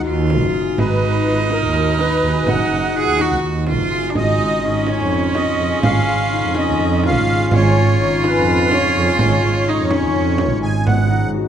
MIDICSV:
0, 0, Header, 1, 7, 480
1, 0, Start_track
1, 0, Tempo, 480000
1, 782, Time_signature, 7, 3, 24, 8
1, 11480, End_track
2, 0, Start_track
2, 0, Title_t, "Accordion"
2, 0, Program_c, 0, 21
2, 789, Note_on_c, 0, 71, 74
2, 1521, Note_on_c, 0, 70, 74
2, 1530, Note_off_c, 0, 71, 0
2, 2001, Note_on_c, 0, 71, 91
2, 2009, Note_off_c, 0, 70, 0
2, 2482, Note_on_c, 0, 78, 89
2, 2490, Note_off_c, 0, 71, 0
2, 3398, Note_off_c, 0, 78, 0
2, 4167, Note_on_c, 0, 75, 92
2, 4890, Note_on_c, 0, 73, 71
2, 4902, Note_off_c, 0, 75, 0
2, 5342, Note_on_c, 0, 75, 92
2, 5376, Note_off_c, 0, 73, 0
2, 5794, Note_off_c, 0, 75, 0
2, 5828, Note_on_c, 0, 77, 97
2, 6572, Note_off_c, 0, 77, 0
2, 6576, Note_on_c, 0, 75, 76
2, 7011, Note_off_c, 0, 75, 0
2, 7055, Note_on_c, 0, 77, 104
2, 7538, Note_off_c, 0, 77, 0
2, 7538, Note_on_c, 0, 73, 94
2, 8258, Note_on_c, 0, 71, 75
2, 8265, Note_off_c, 0, 73, 0
2, 8691, Note_off_c, 0, 71, 0
2, 8732, Note_on_c, 0, 73, 93
2, 9180, Note_off_c, 0, 73, 0
2, 9195, Note_on_c, 0, 73, 80
2, 10587, Note_off_c, 0, 73, 0
2, 10626, Note_on_c, 0, 80, 98
2, 10866, Note_on_c, 0, 78, 87
2, 10871, Note_off_c, 0, 80, 0
2, 11309, Note_off_c, 0, 78, 0
2, 11480, End_track
3, 0, Start_track
3, 0, Title_t, "Harp"
3, 0, Program_c, 1, 46
3, 0, Note_on_c, 1, 63, 79
3, 0, Note_on_c, 1, 65, 65
3, 0, Note_on_c, 1, 68, 57
3, 54, Note_on_c, 1, 66, 64
3, 114, Note_off_c, 1, 65, 0
3, 288, Note_off_c, 1, 66, 0
3, 292, Note_on_c, 1, 66, 68
3, 535, Note_off_c, 1, 68, 0
3, 539, Note_on_c, 1, 68, 67
3, 775, Note_off_c, 1, 63, 0
3, 779, Note_on_c, 1, 63, 82
3, 1014, Note_off_c, 1, 66, 0
3, 1018, Note_on_c, 1, 66, 75
3, 1254, Note_on_c, 1, 65, 69
3, 1314, Note_off_c, 1, 66, 0
3, 1496, Note_off_c, 1, 63, 0
3, 1500, Note_on_c, 1, 63, 74
3, 1744, Note_on_c, 1, 66, 70
3, 1804, Note_off_c, 1, 65, 0
3, 1977, Note_off_c, 1, 66, 0
3, 1981, Note_on_c, 1, 66, 67
3, 2225, Note_off_c, 1, 68, 0
3, 2229, Note_on_c, 1, 68, 65
3, 2467, Note_off_c, 1, 63, 0
3, 2471, Note_on_c, 1, 63, 83
3, 2709, Note_off_c, 1, 66, 0
3, 2713, Note_on_c, 1, 66, 66
3, 2946, Note_on_c, 1, 65, 70
3, 3006, Note_off_c, 1, 66, 0
3, 3184, Note_off_c, 1, 63, 0
3, 3188, Note_on_c, 1, 63, 77
3, 3428, Note_on_c, 1, 66, 65
3, 3488, Note_off_c, 1, 65, 0
3, 3669, Note_off_c, 1, 66, 0
3, 3673, Note_on_c, 1, 66, 69
3, 3902, Note_off_c, 1, 68, 0
3, 3906, Note_on_c, 1, 68, 64
3, 4154, Note_on_c, 1, 61, 81
3, 4394, Note_on_c, 1, 65, 68
3, 4454, Note_off_c, 1, 66, 0
3, 4627, Note_off_c, 1, 63, 0
3, 4631, Note_on_c, 1, 63, 68
3, 4871, Note_off_c, 1, 61, 0
3, 4875, Note_on_c, 1, 61, 78
3, 5112, Note_off_c, 1, 65, 0
3, 5116, Note_on_c, 1, 65, 66
3, 5347, Note_off_c, 1, 65, 0
3, 5351, Note_on_c, 1, 65, 69
3, 5594, Note_off_c, 1, 68, 0
3, 5598, Note_on_c, 1, 68, 69
3, 5829, Note_off_c, 1, 61, 0
3, 5833, Note_on_c, 1, 61, 82
3, 6072, Note_off_c, 1, 65, 0
3, 6076, Note_on_c, 1, 65, 66
3, 6317, Note_off_c, 1, 63, 0
3, 6321, Note_on_c, 1, 63, 70
3, 6553, Note_off_c, 1, 61, 0
3, 6557, Note_on_c, 1, 61, 80
3, 6792, Note_off_c, 1, 65, 0
3, 6796, Note_on_c, 1, 65, 67
3, 7034, Note_off_c, 1, 65, 0
3, 7038, Note_on_c, 1, 65, 67
3, 7283, Note_off_c, 1, 68, 0
3, 7287, Note_on_c, 1, 68, 63
3, 7526, Note_off_c, 1, 61, 0
3, 7530, Note_on_c, 1, 61, 96
3, 7762, Note_off_c, 1, 65, 0
3, 7766, Note_on_c, 1, 65, 73
3, 7994, Note_off_c, 1, 63, 0
3, 7998, Note_on_c, 1, 63, 76
3, 8240, Note_off_c, 1, 61, 0
3, 8244, Note_on_c, 1, 61, 84
3, 8478, Note_off_c, 1, 65, 0
3, 8482, Note_on_c, 1, 65, 75
3, 8717, Note_off_c, 1, 65, 0
3, 8721, Note_on_c, 1, 65, 79
3, 8954, Note_off_c, 1, 68, 0
3, 8958, Note_on_c, 1, 68, 72
3, 9198, Note_off_c, 1, 61, 0
3, 9202, Note_on_c, 1, 61, 89
3, 9434, Note_off_c, 1, 65, 0
3, 9438, Note_on_c, 1, 65, 79
3, 9667, Note_off_c, 1, 63, 0
3, 9671, Note_on_c, 1, 63, 81
3, 9913, Note_off_c, 1, 61, 0
3, 9917, Note_on_c, 1, 61, 90
3, 10149, Note_off_c, 1, 65, 0
3, 10153, Note_on_c, 1, 65, 70
3, 10390, Note_off_c, 1, 65, 0
3, 10394, Note_on_c, 1, 65, 80
3, 10628, Note_off_c, 1, 68, 0
3, 10632, Note_on_c, 1, 68, 73
3, 10874, Note_on_c, 1, 59, 83
3, 11097, Note_off_c, 1, 63, 0
3, 11101, Note_on_c, 1, 63, 75
3, 11342, Note_on_c, 1, 66, 75
3, 11402, Note_off_c, 1, 65, 0
3, 11480, Note_off_c, 1, 59, 0
3, 11480, Note_off_c, 1, 61, 0
3, 11480, Note_off_c, 1, 63, 0
3, 11480, Note_off_c, 1, 66, 0
3, 11480, Note_off_c, 1, 68, 0
3, 11480, End_track
4, 0, Start_track
4, 0, Title_t, "Cello"
4, 0, Program_c, 2, 42
4, 44, Note_on_c, 2, 65, 85
4, 788, Note_on_c, 2, 63, 97
4, 803, Note_off_c, 2, 65, 0
4, 2966, Note_on_c, 2, 68, 102
4, 2981, Note_off_c, 2, 63, 0
4, 3208, Note_on_c, 2, 66, 84
4, 3223, Note_off_c, 2, 68, 0
4, 3681, Note_off_c, 2, 66, 0
4, 3689, Note_on_c, 2, 65, 94
4, 4096, Note_on_c, 2, 62, 58
4, 4111, Note_off_c, 2, 65, 0
4, 4158, Note_on_c, 2, 63, 84
4, 4173, Note_off_c, 2, 62, 0
4, 4649, Note_on_c, 2, 61, 93
4, 4664, Note_off_c, 2, 63, 0
4, 7516, Note_off_c, 2, 61, 0
4, 7522, Note_on_c, 2, 65, 102
4, 9688, Note_on_c, 2, 63, 79
4, 9703, Note_off_c, 2, 65, 0
4, 9910, Note_on_c, 2, 61, 73
4, 9925, Note_off_c, 2, 63, 0
4, 10626, Note_off_c, 2, 61, 0
4, 11480, End_track
5, 0, Start_track
5, 0, Title_t, "Woodwind section"
5, 0, Program_c, 3, 71
5, 4163, Note_on_c, 3, 46, 64
5, 4169, Note_on_c, 3, 65, 75
5, 4171, Note_on_c, 3, 49, 64
5, 10703, Note_off_c, 3, 46, 0
5, 10703, Note_off_c, 3, 49, 0
5, 10703, Note_off_c, 3, 65, 0
5, 10873, Note_on_c, 3, 56, 60
5, 10874, Note_on_c, 3, 47, 72
5, 10874, Note_on_c, 3, 54, 75
5, 11480, Note_off_c, 3, 47, 0
5, 11480, Note_off_c, 3, 54, 0
5, 11480, Note_off_c, 3, 56, 0
5, 11480, End_track
6, 0, Start_track
6, 0, Title_t, "Double bass"
6, 0, Program_c, 4, 43
6, 56, Note_on_c, 4, 39, 97
6, 421, Note_on_c, 4, 30, 77
6, 436, Note_off_c, 4, 39, 0
6, 606, Note_off_c, 4, 30, 0
6, 783, Note_on_c, 4, 32, 85
6, 875, Note_off_c, 4, 32, 0
6, 1025, Note_on_c, 4, 32, 63
6, 1210, Note_off_c, 4, 32, 0
6, 1263, Note_on_c, 4, 32, 68
6, 1449, Note_off_c, 4, 32, 0
6, 1624, Note_on_c, 4, 39, 88
6, 2088, Note_off_c, 4, 39, 0
6, 2221, Note_on_c, 4, 39, 77
6, 2409, Note_off_c, 4, 39, 0
6, 2460, Note_on_c, 4, 30, 99
6, 2649, Note_off_c, 4, 30, 0
6, 2701, Note_on_c, 4, 30, 69
6, 2982, Note_off_c, 4, 30, 0
6, 3070, Note_on_c, 4, 39, 74
6, 3162, Note_off_c, 4, 39, 0
6, 3311, Note_on_c, 4, 37, 73
6, 3404, Note_off_c, 4, 37, 0
6, 3427, Note_on_c, 4, 39, 84
6, 3785, Note_on_c, 4, 30, 76
6, 3800, Note_off_c, 4, 39, 0
6, 3973, Note_off_c, 4, 30, 0
6, 4148, Note_on_c, 4, 32, 79
6, 4242, Note_off_c, 4, 32, 0
6, 4383, Note_on_c, 4, 32, 61
6, 4572, Note_off_c, 4, 32, 0
6, 4626, Note_on_c, 4, 32, 74
6, 4814, Note_off_c, 4, 32, 0
6, 4987, Note_on_c, 4, 41, 82
6, 5451, Note_off_c, 4, 41, 0
6, 5589, Note_on_c, 4, 41, 70
6, 5775, Note_off_c, 4, 41, 0
6, 5832, Note_on_c, 4, 32, 93
6, 6017, Note_off_c, 4, 32, 0
6, 6073, Note_on_c, 4, 32, 67
6, 6350, Note_off_c, 4, 32, 0
6, 6438, Note_on_c, 4, 41, 75
6, 6529, Note_off_c, 4, 41, 0
6, 6679, Note_on_c, 4, 39, 76
6, 6769, Note_off_c, 4, 39, 0
6, 6796, Note_on_c, 4, 41, 96
6, 7159, Note_on_c, 4, 32, 86
6, 7174, Note_off_c, 4, 41, 0
6, 7341, Note_off_c, 4, 32, 0
6, 7514, Note_on_c, 4, 32, 102
6, 7606, Note_off_c, 4, 32, 0
6, 7757, Note_on_c, 4, 32, 76
6, 7939, Note_off_c, 4, 32, 0
6, 8006, Note_on_c, 4, 32, 77
6, 8185, Note_off_c, 4, 32, 0
6, 8363, Note_on_c, 4, 41, 88
6, 8818, Note_off_c, 4, 41, 0
6, 8964, Note_on_c, 4, 41, 79
6, 9142, Note_off_c, 4, 41, 0
6, 9200, Note_on_c, 4, 32, 99
6, 9380, Note_off_c, 4, 32, 0
6, 9440, Note_on_c, 4, 32, 70
6, 9711, Note_off_c, 4, 32, 0
6, 9794, Note_on_c, 4, 41, 75
6, 9884, Note_off_c, 4, 41, 0
6, 10037, Note_on_c, 4, 39, 74
6, 10125, Note_off_c, 4, 39, 0
6, 10144, Note_on_c, 4, 41, 87
6, 10515, Note_on_c, 4, 32, 94
6, 10530, Note_off_c, 4, 41, 0
6, 10695, Note_off_c, 4, 32, 0
6, 10864, Note_on_c, 4, 32, 91
6, 11048, Note_off_c, 4, 32, 0
6, 11224, Note_on_c, 4, 44, 80
6, 11407, Note_off_c, 4, 44, 0
6, 11480, End_track
7, 0, Start_track
7, 0, Title_t, "Frame drum"
7, 302, Note_on_c, 9, 64, 51
7, 402, Note_off_c, 9, 64, 0
7, 782, Note_on_c, 9, 64, 50
7, 882, Note_off_c, 9, 64, 0
7, 1500, Note_on_c, 9, 64, 46
7, 1600, Note_off_c, 9, 64, 0
7, 1988, Note_on_c, 9, 64, 48
7, 2088, Note_off_c, 9, 64, 0
7, 2468, Note_on_c, 9, 64, 53
7, 2568, Note_off_c, 9, 64, 0
7, 2714, Note_on_c, 9, 64, 18
7, 2814, Note_off_c, 9, 64, 0
7, 2955, Note_on_c, 9, 64, 16
7, 3055, Note_off_c, 9, 64, 0
7, 3190, Note_on_c, 9, 64, 46
7, 3290, Note_off_c, 9, 64, 0
7, 3424, Note_on_c, 9, 64, 17
7, 3524, Note_off_c, 9, 64, 0
7, 3666, Note_on_c, 9, 64, 45
7, 3766, Note_off_c, 9, 64, 0
7, 4154, Note_on_c, 9, 64, 46
7, 4254, Note_off_c, 9, 64, 0
7, 4866, Note_on_c, 9, 64, 47
7, 4966, Note_off_c, 9, 64, 0
7, 5349, Note_on_c, 9, 64, 55
7, 5449, Note_off_c, 9, 64, 0
7, 5832, Note_on_c, 9, 64, 59
7, 5932, Note_off_c, 9, 64, 0
7, 6548, Note_on_c, 9, 64, 49
7, 6648, Note_off_c, 9, 64, 0
7, 7036, Note_on_c, 9, 64, 55
7, 7136, Note_off_c, 9, 64, 0
7, 7513, Note_on_c, 9, 64, 55
7, 7613, Note_off_c, 9, 64, 0
7, 8240, Note_on_c, 9, 64, 55
7, 8340, Note_off_c, 9, 64, 0
7, 8715, Note_on_c, 9, 64, 60
7, 8815, Note_off_c, 9, 64, 0
7, 9190, Note_on_c, 9, 64, 62
7, 9290, Note_off_c, 9, 64, 0
7, 9428, Note_on_c, 9, 64, 24
7, 9528, Note_off_c, 9, 64, 0
7, 9671, Note_on_c, 9, 64, 18
7, 9771, Note_off_c, 9, 64, 0
7, 9907, Note_on_c, 9, 64, 56
7, 10007, Note_off_c, 9, 64, 0
7, 10151, Note_on_c, 9, 64, 22
7, 10251, Note_off_c, 9, 64, 0
7, 10383, Note_on_c, 9, 64, 58
7, 10483, Note_off_c, 9, 64, 0
7, 10622, Note_on_c, 9, 64, 20
7, 10722, Note_off_c, 9, 64, 0
7, 10867, Note_on_c, 9, 64, 55
7, 10967, Note_off_c, 9, 64, 0
7, 11100, Note_on_c, 9, 64, 17
7, 11200, Note_off_c, 9, 64, 0
7, 11480, End_track
0, 0, End_of_file